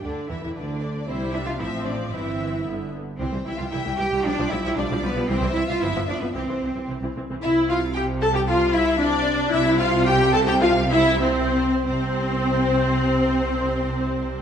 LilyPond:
<<
  \new Staff \with { instrumentName = "Violin section" } { \time 2/4 \key c \major \tempo 4 = 113 g'4 b'8 d''8 | e''4 c''4 | e''4. r8 | g''2~ |
g''4 d''4 | e''2 | g'4. r8 | e''8 f''8 g''8 a''16 g''16 |
f''8 e''8 d''4 | e''8 f''8 g''8 a''16 g''16 | f''8 e''8 c''4 | c''2~ |
c''2 | }
  \new Staff \with { instrumentName = "Violin section" } { \time 2/4 \key c \major d''8 e''16 e''16 d''4 | c''8 e''16 f''16 e''8 d''8 | e''4 r4 | c''8 e''16 f''16 e''8 g''8 |
d''8 e''16 e''16 d''8 b'8 | c''8 e''16 f''16 e''8 d''16 b'16 | c''4 r4 | e''8 f''8 g''8 a''16 g''16 |
f''8 e''8 d''4 | e''8 f''8 g''8 a''16 g''16 | f''8 e''8 c''4 | c''2~ |
c''2 | }
  \new Staff \with { instrumentName = "Cello section" } { \time 2/4 \key c \major d'8 e'16 e'16 d'4 | c'8 e'16 f'16 e'8 d'8 | e'4 r4 | c'8 e'16 f'16 e'8 g'8 |
d'8 e'16 e'16 d'8 b8 | c'8 e'16 f'16 e'8 d'16 b16 | c'4 r4 | c2~ |
c2 | c2~ | c4. r8 | c2~ |
c2 | }
  \new Staff \with { instrumentName = "Viola section" } { \clef bass \time 2/4 \key c \major << { d8 e16 e16 d4 | e'8 d'8 c'4 | c'4 b8 r8 | g16 g16 g16 g16 g16 g16 g16 g16 |
g16 g16 g16 g16 g16 g16 g16 g16 | g16 g16 g16 g16 b16 b16 b16 b16 | c'16 c'16 c'16 c'16 c'16 c'16 c'16 c'16 | e'8 f'8 g'8 a'16 g'16 |
f'8 e'8 d'4 | e'8 f'8 g'8 a'16 g'16 | f'8 e'8 c'4 | c'2~ |
c'2 | } \\ { r2 | g4 f4 | e4 d8 r8 | e16 e16 e16 e16 e16 e16 e16 e16 |
f16 f16 f16 f16 f16 f16 f16 f16 | e16 e16 e16 e16 f16 f16 f16 f16 | e16 e16 e16 e16 e16 e16 e16 e16 | r2 |
r2 | r2 | r2 | r2 |
r2 | } >> }
  \new Staff \with { instrumentName = "Double bass section" } { \clef bass \time 2/4 \key c \major d,8 e,16 e,16 d,4 | c,4 a,,4 | g,,4 g,,8 r8 | c,16 c,16 c,16 c,16 c,16 c,16 c,16 c,16 |
b,,16 b,,16 b,,16 b,,16 b,,16 b,,16 b,,16 b,,16 | c,16 c,16 c,16 c,16 g,,16 g,,16 g,,16 g,,16 | c,16 c,16 c,16 c,16 c,16 c,16 c,16 c,16 | c,2~ |
c,2 | c,2~ | c,4. r8 | c,2~ |
c,2 | }
>>